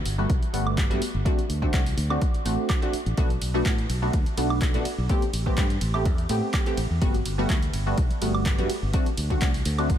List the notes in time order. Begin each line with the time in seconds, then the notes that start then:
0.06 G1, open hi-hat
0.18 G3 A3 B3 F#4
0.30 B1, kick, closed hi-hat
0.43 closed hi-hat
0.53 G1 G3 A3 B3 F#4, open hi-hat
0.67 high woodblock
0.78 kick, clap, closed hi-hat
0.90 G2 G3 A3 B3 F#4, closed hi-hat
1.02 muted fingered electric bass stroke, open hi-hat
1.14 G1
1.25 A3 C4 D4 F#4, kick, closed hi-hat
1.38 muted fingered electric bass stroke, closed hi-hat
1.50 D2, open hi-hat
1.62 A3 C4 D4 F#4, kick
1.74 C2, kick, clap, closed hi-hat
1.86 open hi-hat
1.97 D2, open hi-hat
2.10 A3 C4 D4 F#4, high woodblock
2.22 kick, closed hi-hat
2.34 muted fingered electric bass stroke, closed hi-hat
2.45 A1 A3 C4 D4 F#4, open hi-hat
2.69 kick, clap, closed hi-hat, high woodblock
2.82 A3 C4 D4 F#4, closed hi-hat
2.93 muted fingered electric bass stroke, open hi-hat
3.06 A1, closed hi-hat
3.17 B1 A3 B3 D4 F#4, kick, closed hi-hat, ride
3.30 closed hi-hat
3.42 B1, open hi-hat, ride
3.54 A3 B3 D4 F#4
3.66 A2, kick, clap, closed hi-hat, ride
3.78 closed hi-hat
3.89 B1, open hi-hat, ride
4.02 A3 B3 D4 F#4
4.13 D2, kick, closed hi-hat, ride
4.26 muted fingered electric bass stroke, closed hi-hat
4.37 B1 A3 B3 D4 F#4, open hi-hat, ride
4.50 high woodblock
4.61 kick, clap, closed hi-hat, ride
4.74 B2 A3 B3 D4 F#4, closed hi-hat
4.85 muted fingered electric bass stroke, open hi-hat, ride
4.98 B1
5.09 A3 B3 C4 G4, kick, closed hi-hat, ride
5.22 muted fingered electric bass stroke, closed hi-hat
5.33 A1, open hi-hat, ride
5.46 A3 B3 C4 G4, kick
5.57 G2, kick, clap, closed hi-hat, ride
5.70 closed hi-hat
5.81 A1, open hi-hat, ride
5.94 A3 B3 C4 G4, high woodblock
6.05 E2, kick, closed hi-hat, ride
6.18 closed hi-hat
6.29 A2 A3 B3 C4 G4, open hi-hat, ride
6.54 kick, clap, closed hi-hat, ride, high woodblock
6.66 A3 B3 C4 G4, closed hi-hat
6.77 A1, open hi-hat, ride
6.90 E2
7.01 G1 G3 A3 B3 F#4, kick, closed hi-hat, ride
7.14 closed hi-hat
7.26 G1, open hi-hat, ride
7.38 G3 A3 B3 F#4
7.50 D2, kick, clap, closed hi-hat, ride
7.63 closed hi-hat
7.74 G1, open hi-hat, ride
7.86 G3 A3 B3 F#4
7.98 B1, kick, closed hi-hat, ride
8.11 muted fingered electric bass stroke, closed hi-hat
8.21 G1 G3 A3 B3 F#4, open hi-hat, ride
8.35 high woodblock
8.46 kick, clap, closed hi-hat, ride
8.58 G2 G3 A3 B3 F#4, closed hi-hat
8.70 muted fingered electric bass stroke, open hi-hat, ride
8.83 G1
8.93 A3 C4 D4 F#4, kick, closed hi-hat, ride
9.06 muted fingered electric bass stroke, closed hi-hat
9.17 D2, open hi-hat, ride
9.30 A3 C4 D4 F#4, kick, closed hi-hat
9.41 C2, kick, clap, closed hi-hat, ride
9.54 open hi-hat
9.65 D2, open hi-hat, ride
9.78 A3 C4 D4 F#4, closed hi-hat, high woodblock
9.90 A1, kick, closed hi-hat, ride, reverse cymbal